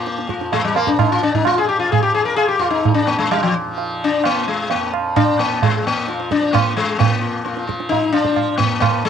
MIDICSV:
0, 0, Header, 1, 4, 480
1, 0, Start_track
1, 0, Tempo, 462963
1, 1524, Time_signature, 4, 2, 24, 8
1, 4876, Tempo, 455927
1, 9498, End_track
2, 0, Start_track
2, 0, Title_t, "Sitar"
2, 0, Program_c, 0, 104
2, 0, Note_on_c, 0, 58, 89
2, 283, Note_off_c, 0, 58, 0
2, 311, Note_on_c, 0, 65, 35
2, 539, Note_off_c, 0, 65, 0
2, 548, Note_on_c, 0, 56, 84
2, 666, Note_off_c, 0, 56, 0
2, 670, Note_on_c, 0, 55, 66
2, 769, Note_off_c, 0, 55, 0
2, 776, Note_on_c, 0, 60, 52
2, 790, Note_on_c, 0, 58, 85
2, 804, Note_off_c, 0, 60, 0
2, 908, Note_on_c, 0, 62, 70
2, 920, Note_off_c, 0, 58, 0
2, 1026, Note_off_c, 0, 62, 0
2, 1031, Note_on_c, 0, 63, 67
2, 1158, Note_off_c, 0, 63, 0
2, 1162, Note_on_c, 0, 65, 80
2, 1274, Note_off_c, 0, 65, 0
2, 1278, Note_on_c, 0, 62, 84
2, 1394, Note_off_c, 0, 62, 0
2, 1398, Note_on_c, 0, 63, 74
2, 1513, Note_off_c, 0, 63, 0
2, 1521, Note_on_c, 0, 65, 92
2, 1639, Note_on_c, 0, 68, 94
2, 1647, Note_off_c, 0, 65, 0
2, 1746, Note_off_c, 0, 68, 0
2, 1750, Note_on_c, 0, 67, 85
2, 1858, Note_off_c, 0, 67, 0
2, 1862, Note_on_c, 0, 65, 84
2, 1986, Note_off_c, 0, 65, 0
2, 1991, Note_on_c, 0, 68, 93
2, 2096, Note_off_c, 0, 68, 0
2, 2101, Note_on_c, 0, 67, 84
2, 2219, Note_off_c, 0, 67, 0
2, 2224, Note_on_c, 0, 68, 88
2, 2331, Note_off_c, 0, 68, 0
2, 2335, Note_on_c, 0, 70, 86
2, 2447, Note_off_c, 0, 70, 0
2, 2452, Note_on_c, 0, 68, 108
2, 2571, Note_off_c, 0, 68, 0
2, 2575, Note_on_c, 0, 67, 78
2, 2689, Note_on_c, 0, 65, 86
2, 2715, Note_off_c, 0, 67, 0
2, 2801, Note_off_c, 0, 65, 0
2, 2805, Note_on_c, 0, 63, 78
2, 3048, Note_off_c, 0, 63, 0
2, 3052, Note_on_c, 0, 62, 85
2, 3184, Note_on_c, 0, 58, 79
2, 3193, Note_off_c, 0, 62, 0
2, 3299, Note_off_c, 0, 58, 0
2, 3303, Note_on_c, 0, 56, 78
2, 3430, Note_off_c, 0, 56, 0
2, 3434, Note_on_c, 0, 55, 92
2, 3550, Note_off_c, 0, 55, 0
2, 3554, Note_on_c, 0, 53, 72
2, 3670, Note_off_c, 0, 53, 0
2, 4189, Note_on_c, 0, 62, 95
2, 4409, Note_on_c, 0, 58, 90
2, 4420, Note_off_c, 0, 62, 0
2, 4626, Note_off_c, 0, 58, 0
2, 4643, Note_on_c, 0, 56, 74
2, 4874, Note_off_c, 0, 56, 0
2, 4878, Note_on_c, 0, 58, 67
2, 5102, Note_off_c, 0, 58, 0
2, 5358, Note_on_c, 0, 62, 107
2, 5601, Note_on_c, 0, 58, 86
2, 5607, Note_off_c, 0, 62, 0
2, 5847, Note_off_c, 0, 58, 0
2, 5851, Note_on_c, 0, 56, 85
2, 6095, Note_off_c, 0, 56, 0
2, 6103, Note_on_c, 0, 58, 79
2, 6318, Note_off_c, 0, 58, 0
2, 6335, Note_on_c, 0, 65, 37
2, 6554, Note_off_c, 0, 65, 0
2, 6573, Note_on_c, 0, 62, 101
2, 6797, Note_on_c, 0, 58, 83
2, 6817, Note_off_c, 0, 62, 0
2, 7043, Note_off_c, 0, 58, 0
2, 7047, Note_on_c, 0, 56, 79
2, 7275, Note_on_c, 0, 65, 37
2, 7278, Note_off_c, 0, 56, 0
2, 7282, Note_on_c, 0, 58, 83
2, 7503, Note_off_c, 0, 65, 0
2, 7517, Note_on_c, 0, 65, 35
2, 7744, Note_off_c, 0, 65, 0
2, 7763, Note_on_c, 0, 65, 35
2, 7961, Note_off_c, 0, 58, 0
2, 7987, Note_off_c, 0, 65, 0
2, 8002, Note_on_c, 0, 65, 31
2, 8226, Note_off_c, 0, 65, 0
2, 8231, Note_on_c, 0, 63, 90
2, 8473, Note_off_c, 0, 63, 0
2, 8477, Note_on_c, 0, 62, 91
2, 8924, Note_off_c, 0, 62, 0
2, 8952, Note_on_c, 0, 58, 82
2, 9180, Note_off_c, 0, 58, 0
2, 9192, Note_on_c, 0, 58, 97
2, 9441, Note_off_c, 0, 58, 0
2, 9452, Note_on_c, 0, 56, 90
2, 9498, Note_off_c, 0, 56, 0
2, 9498, End_track
3, 0, Start_track
3, 0, Title_t, "Tanpura"
3, 0, Program_c, 1, 104
3, 0, Note_on_c, 1, 41, 63
3, 0, Note_on_c, 1, 46, 58
3, 0, Note_on_c, 1, 53, 56
3, 390, Note_off_c, 1, 41, 0
3, 394, Note_on_c, 1, 41, 59
3, 950, Note_off_c, 1, 46, 0
3, 954, Note_on_c, 1, 46, 65
3, 1521, Note_off_c, 1, 53, 0
3, 1521, Note_on_c, 1, 53, 55
3, 2089, Note_off_c, 1, 53, 0
3, 2089, Note_on_c, 1, 53, 55
3, 2665, Note_off_c, 1, 41, 0
3, 2669, Note_on_c, 1, 41, 57
3, 3227, Note_off_c, 1, 46, 0
3, 3231, Note_on_c, 1, 46, 59
3, 3801, Note_off_c, 1, 53, 0
3, 3801, Note_on_c, 1, 53, 65
3, 4363, Note_off_c, 1, 53, 0
3, 4363, Note_on_c, 1, 53, 57
3, 4909, Note_off_c, 1, 41, 0
3, 4913, Note_on_c, 1, 41, 67
3, 5478, Note_off_c, 1, 46, 0
3, 5482, Note_on_c, 1, 46, 66
3, 6043, Note_off_c, 1, 53, 0
3, 6043, Note_on_c, 1, 53, 60
3, 6624, Note_off_c, 1, 53, 0
3, 6624, Note_on_c, 1, 53, 65
3, 7287, Note_off_c, 1, 46, 0
3, 7292, Note_on_c, 1, 46, 52
3, 7847, Note_off_c, 1, 53, 0
3, 7847, Note_on_c, 1, 53, 59
3, 8427, Note_off_c, 1, 53, 0
3, 8427, Note_on_c, 1, 53, 59
3, 8970, Note_off_c, 1, 41, 0
3, 8975, Note_on_c, 1, 41, 57
3, 9498, Note_off_c, 1, 41, 0
3, 9498, Note_off_c, 1, 46, 0
3, 9498, Note_off_c, 1, 53, 0
3, 9498, End_track
4, 0, Start_track
4, 0, Title_t, "Tabla"
4, 71, Note_on_c, 9, 62, 77
4, 175, Note_off_c, 9, 62, 0
4, 191, Note_on_c, 9, 62, 55
4, 295, Note_off_c, 9, 62, 0
4, 304, Note_on_c, 9, 37, 60
4, 407, Note_off_c, 9, 37, 0
4, 429, Note_on_c, 9, 62, 57
4, 533, Note_off_c, 9, 62, 0
4, 546, Note_on_c, 9, 63, 77
4, 546, Note_on_c, 9, 64, 61
4, 649, Note_off_c, 9, 63, 0
4, 649, Note_off_c, 9, 64, 0
4, 789, Note_on_c, 9, 60, 61
4, 893, Note_off_c, 9, 60, 0
4, 906, Note_on_c, 9, 37, 58
4, 1010, Note_off_c, 9, 37, 0
4, 1026, Note_on_c, 9, 60, 72
4, 1026, Note_on_c, 9, 64, 74
4, 1130, Note_off_c, 9, 60, 0
4, 1130, Note_off_c, 9, 64, 0
4, 1274, Note_on_c, 9, 62, 59
4, 1377, Note_off_c, 9, 62, 0
4, 1395, Note_on_c, 9, 64, 52
4, 1498, Note_off_c, 9, 64, 0
4, 1505, Note_on_c, 9, 60, 80
4, 1505, Note_on_c, 9, 64, 73
4, 1609, Note_off_c, 9, 60, 0
4, 1609, Note_off_c, 9, 64, 0
4, 1998, Note_on_c, 9, 63, 73
4, 1998, Note_on_c, 9, 64, 70
4, 2102, Note_off_c, 9, 63, 0
4, 2102, Note_off_c, 9, 64, 0
4, 2468, Note_on_c, 9, 60, 65
4, 2571, Note_off_c, 9, 60, 0
4, 2714, Note_on_c, 9, 60, 59
4, 2818, Note_off_c, 9, 60, 0
4, 2959, Note_on_c, 9, 63, 74
4, 2959, Note_on_c, 9, 64, 72
4, 3062, Note_off_c, 9, 63, 0
4, 3062, Note_off_c, 9, 64, 0
4, 3440, Note_on_c, 9, 60, 80
4, 3543, Note_off_c, 9, 60, 0
4, 3916, Note_on_c, 9, 63, 73
4, 4020, Note_off_c, 9, 63, 0
4, 4391, Note_on_c, 9, 60, 75
4, 4495, Note_off_c, 9, 60, 0
4, 4870, Note_on_c, 9, 63, 81
4, 4976, Note_off_c, 9, 63, 0
4, 5121, Note_on_c, 9, 60, 62
4, 5226, Note_off_c, 9, 60, 0
4, 5361, Note_on_c, 9, 60, 81
4, 5361, Note_on_c, 9, 64, 67
4, 5466, Note_off_c, 9, 60, 0
4, 5466, Note_off_c, 9, 64, 0
4, 5846, Note_on_c, 9, 63, 75
4, 5846, Note_on_c, 9, 64, 72
4, 5951, Note_off_c, 9, 63, 0
4, 5951, Note_off_c, 9, 64, 0
4, 6331, Note_on_c, 9, 62, 75
4, 6436, Note_off_c, 9, 62, 0
4, 6450, Note_on_c, 9, 62, 62
4, 6555, Note_off_c, 9, 62, 0
4, 6569, Note_on_c, 9, 37, 56
4, 6674, Note_off_c, 9, 37, 0
4, 6694, Note_on_c, 9, 62, 63
4, 6799, Note_off_c, 9, 62, 0
4, 6816, Note_on_c, 9, 60, 78
4, 6816, Note_on_c, 9, 64, 70
4, 6922, Note_off_c, 9, 60, 0
4, 6922, Note_off_c, 9, 64, 0
4, 7062, Note_on_c, 9, 62, 69
4, 7168, Note_off_c, 9, 62, 0
4, 7297, Note_on_c, 9, 63, 91
4, 7297, Note_on_c, 9, 64, 92
4, 7402, Note_off_c, 9, 63, 0
4, 7402, Note_off_c, 9, 64, 0
4, 7778, Note_on_c, 9, 62, 77
4, 7883, Note_off_c, 9, 62, 0
4, 7892, Note_on_c, 9, 62, 54
4, 7998, Note_off_c, 9, 62, 0
4, 8021, Note_on_c, 9, 37, 60
4, 8126, Note_off_c, 9, 37, 0
4, 8137, Note_on_c, 9, 62, 54
4, 8242, Note_off_c, 9, 62, 0
4, 8260, Note_on_c, 9, 63, 75
4, 8260, Note_on_c, 9, 64, 65
4, 8365, Note_off_c, 9, 63, 0
4, 8365, Note_off_c, 9, 64, 0
4, 8495, Note_on_c, 9, 60, 64
4, 8600, Note_off_c, 9, 60, 0
4, 8607, Note_on_c, 9, 37, 54
4, 8713, Note_off_c, 9, 37, 0
4, 8730, Note_on_c, 9, 60, 75
4, 8730, Note_on_c, 9, 64, 66
4, 8835, Note_off_c, 9, 60, 0
4, 8835, Note_off_c, 9, 64, 0
4, 8972, Note_on_c, 9, 64, 55
4, 9078, Note_off_c, 9, 64, 0
4, 9209, Note_on_c, 9, 60, 73
4, 9209, Note_on_c, 9, 64, 69
4, 9315, Note_off_c, 9, 60, 0
4, 9315, Note_off_c, 9, 64, 0
4, 9498, End_track
0, 0, End_of_file